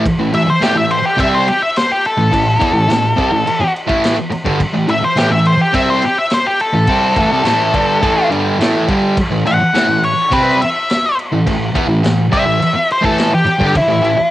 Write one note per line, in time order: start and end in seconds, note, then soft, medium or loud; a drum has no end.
0.06 kick loud
0.06 crash medium
0.19 0.32 A2 medium
0.19 0.32 E3 medium
0.33 0.45 A2 medium
0.33 0.48 E3 medium
0.33 0.48 E5 loud
0.33 crash medium
0.47 0.62 C5 medium
0.47 muted distorted electric guitar stroke medium
0.61 0.75 A2 medium
0.61 0.75 E3 loud
0.61 0.76 G4 medium
0.61 snare loud
0.61 crash medium
0.76 0.99 A2 medium
0.76 0.99 E3 medium
0.76 0.90 E5 loud
0.91 1.04 C5 medium
0.91 crash medium
1.06 1.19 G4 medium
1.17 1.45 C3 loud
1.17 1.46 G3 loud
1.17 1.46 C4 loud
1.17 1.33 E5 medium
1.17 kick loud
1.17 crash medium
1.35 1.48 C5 medium
1.48 1.61 G4 medium
1.48 crash medium
1.62 1.76 E5 loud
1.76 1.90 C5 medium
1.76 snare loud
1.76 crash medium
1.92 2.04 G4 medium
2.05 3.72 A4 medium
2.05 crash medium
2.17 2.31 A2 medium
2.17 2.31 E3 medium
2.32 2.55 A2 medium
2.32 2.55 E3 medium
2.32 kick medium
2.32 crash medium
2.60 2.72 E3 medium
2.60 2.73 B3 loud
2.60 kick loud
2.60 crash medium
2.73 2.86 A2 medium
2.73 2.87 E3 medium
2.88 3.11 A2 medium
2.88 3.12 E3 medium
2.88 snare loud
2.88 crash medium
3.16 3.30 C3 medium
3.16 3.31 G3 loud
3.16 kick loud
3.16 crash medium
3.32 3.45 A2 medium
3.32 3.46 E3 medium
3.46 muted distorted electric guitar stroke medium
3.46 crash medium
3.60 muted distorted electric guitar stroke medium
3.76 crash medium
3.87 4.15 A2 loud
3.87 4.16 E3 medium
3.87 4.16 A3 loud
3.87 kick loud
4.04 snare loud
4.04 crash medium
4.16 muted distorted electric guitar stroke medium
4.30 muted distorted electric guitar stroke medium
4.30 crash medium
4.44 4.58 G2 loud
4.44 4.59 D3 loud
4.44 kick loud
4.60 kick loud
4.60 crash medium
4.73 4.86 A2 medium
4.73 4.86 E3 medium
4.87 5.00 A2 medium
4.87 5.02 E3 medium
4.87 5.03 E5 medium
4.87 crash medium
5.02 5.17 C5 medium
5.02 muted distorted electric guitar stroke medium
5.16 5.30 A2 loud
5.16 5.30 E3 loud
5.16 5.31 G4 medium
5.16 snare loud
5.16 crash medium
5.31 5.54 A2 medium
5.31 5.54 E3 medium
5.31 5.45 E5 loud
5.45 5.60 C5 medium
5.45 crash medium
5.61 5.74 G4 medium
5.72 6.01 C3 medium
5.72 6.01 G3 loud
5.72 6.02 C4 loud
5.72 5.88 E5 medium
5.72 kick loud
5.72 crash medium
5.90 6.03 C5 medium
6.02 6.18 G4 medium
6.02 crash medium
6.18 6.31 E5 loud
6.30 6.46 C5 medium
6.30 snare loud
6.30 crash medium
6.47 6.60 G4 loud
6.60 8.28 A4 loud
6.60 crash medium
6.73 6.88 A2 medium
6.73 6.88 E3 medium
6.87 7.16 C3 medium
6.87 7.16 G3 loud
6.87 7.17 C4 loud
6.87 kick loud
6.87 crash medium
7.17 7.30 A2 medium
7.17 7.31 E3 loud
7.17 kick loud
7.17 crash medium
7.32 7.44 C3 medium
7.32 7.45 G3 loud
7.44 7.72 A2 medium
7.44 7.73 E3 medium
7.44 7.73 A3 loud
7.44 snare loud
7.44 crash medium
7.74 8.01 G2 medium
7.74 8.02 D3 loud
7.74 8.02 G3 loud
7.74 kick loud
7.74 crash medium
8.02 8.30 A2 loud
8.02 8.30 E3 medium
8.02 8.30 A3 loud
8.02 kick loud
8.02 crash medium
8.31 8.58 G2 medium
8.31 8.59 D3 medium
8.31 8.59 G3 loud
8.31 crash medium
8.60 8.87 A2 medium
8.60 8.88 E3 loud
8.60 8.88 A3 loud
8.60 snare loud
8.60 crash medium
8.88 9.16 G2 medium
8.88 9.16 D3 loud
8.88 9.16 G3 loud
8.88 kick loud
8.88 crash medium
9.17 kick loud
9.17 crash medium
9.31 9.45 A2 medium
9.31 9.45 E3 medium
9.46 9.59 A2 medium
9.46 9.60 E3 medium
9.46 10.02 F#5 medium
9.46 crash medium
9.60 muted distorted electric guitar stroke medium
9.74 9.87 A2 loud
9.74 9.87 E3 loud
9.74 snare loud
9.74 crash medium
9.88 10.11 A2 medium
9.88 10.11 E3 medium
10.03 10.31 C#5 medium
10.03 crash medium
10.31 10.58 C3 loud
10.31 10.59 G3 loud
10.31 10.59 C4 loud
10.31 10.60 B4 medium
10.31 kick loud
10.31 crash medium
10.61 11.16 E5 loud
10.61 crash medium
10.89 snare loud
10.89 crash medium
11.19 crash medium
11.32 11.45 A2 medium
11.32 11.45 E3 medium
11.46 11.69 A2 medium
11.46 11.69 E3 medium
11.46 kick medium
11.46 crash medium
11.74 11.87 E3 medium
11.74 11.88 B3 medium
11.74 kick loud
11.74 crash medium
11.88 12.02 A2 medium
11.88 12.03 E3 medium
12.03 12.26 A2 medium
12.03 12.26 E3 medium
12.03 snare loud
12.03 crash medium
12.31 12.45 C3 medium
12.31 12.45 G3 loud
12.31 12.88 E5 loud
12.31 kick loud
12.31 crash medium
12.46 12.59 A2 medium
12.46 12.60 E3 medium
12.60 muted distorted electric guitar stroke medium
12.60 crash medium
12.74 muted distorted electric guitar stroke medium
12.90 13.05 C5 loud
12.90 crash medium
13.02 13.30 A2 loud
13.02 13.31 E3 loud
13.02 13.31 A3 loud
13.02 13.32 A4 medium
13.02 kick medium
13.18 snare loud
13.18 crash medium
13.31 13.75 G4 medium
13.31 muted distorted electric guitar stroke medium
13.45 muted distorted electric guitar stroke medium
13.45 crash medium
13.59 13.73 G2 medium
13.59 13.74 D3 loud
13.59 kick medium
13.75 14.31 E4 loud
13.75 kick loud
13.75 crash medium
13.88 14.01 A2 medium
13.88 14.01 E3 medium
14.02 14.16 A2 medium
14.02 14.17 E3 medium
14.02 crash medium
14.17 muted distorted electric guitar stroke medium